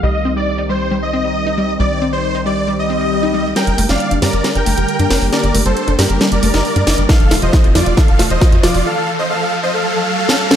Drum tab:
HH |----------------|----------------|xxoxxxoxxxoxxxoo|xxoxxxoxxxoxoxox|
SD |----------------|----------------|o--o--o-o-----o-|o-----o-o--o--o-|
BD |----------------|----------------|----------------|----------------|

HH |xxoxxxoxxxoxxxoo|----------------|
SD |o-o-o-o-o-o-o-o-|-------------o-o|
BD |o---o---o---o---|----------------|